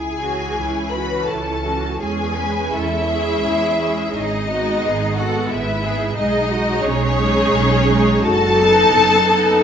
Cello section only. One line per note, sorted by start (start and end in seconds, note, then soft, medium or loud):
0.00 0.17 E4 soft
0.20 0.57 F#4 soft
0.58 0.93 E4 soft
0.93 1.29 F#4 soft
1.29 1.65 E4 soft
1.64 2.01 F#4 soft
2.00 2.36 G#4 soft
2.36 2.73 B4 soft
2.73 3.09 A4 soft
3.08 4.15 G#4 medium
4.16 4.50 G#4 medium
4.50 4.83 F#4 medium
4.84 5.17 G#4 medium
5.17 5.49 A4 medium
5.51 5.84 B4 medium
5.84 6.16 G#4 medium
6.17 6.49 G#4 medium
6.50 6.83 F#4 medium
6.83 8.24 G#4 medium
8.24 8.57 F#4 medium
8.58 9.63 A4 medium